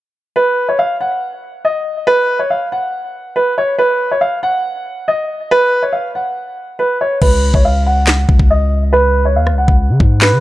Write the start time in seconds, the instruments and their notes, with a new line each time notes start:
0.36 grand piano B4
0.69 grand piano C#5
0.79 grand piano F5
1.01 grand piano F#5
1.65 grand piano D#5
2.07 grand piano B4
2.39 grand piano C#5
2.50 grand piano F5
2.72 grand piano F#5
3.36 grand piano B4
3.58 grand piano C#5
3.78 grand piano B4
4.11 grand piano C#5
4.21 grand piano F5
4.43 grand piano F#5
5.08 grand piano D#5
5.51 grand piano B4
5.83 grand piano C#5
5.93 grand piano F5
6.15 grand piano F#5
6.79 grand piano B4
7.01 grand piano C#5
7.22 808-style bass C#2, grand piano B4, kick, crash
7.54 808-style bass C#2, grand piano C#5, kick
7.65 grand piano F5
7.86 grand piano F#5
8.07 snare, clap
8.29 808-style bass C#2, kick
8.39 808-style bass C#2, kick
8.50 grand piano D#5
8.93 grand piano B4
9.25 grand piano C#5
9.36 808-style bass D#2, grand piano F5
9.47 cross-stick
9.52 808-style bass C#2
9.58 grand piano F#5
9.68 808-style bass C#2, kick
9.89 808-style bass C#3
10.00 808-style bass G#2, kick
10.21 grand piano B4, snare, clap
10.32 808-style bass C#3